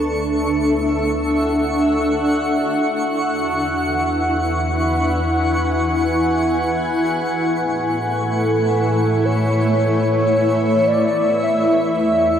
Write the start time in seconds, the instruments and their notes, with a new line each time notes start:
Already playing: synth drone D2, ambient pad D4 A4 E5, synth texture C#6
0.28 ambient pad F#5
2.68 synth drone E2, ambient pad E4
3.15 ambient pad B4
4.65 ambient pad G#5
7.05 synth drone A2, ambient pad A3
8.17 soft synth lead A4
9.03 ambient pad E5
9.25 soft synth lead C#5
10.87 soft synth lead D5
11.42 synth drone E2, soft synth lead E5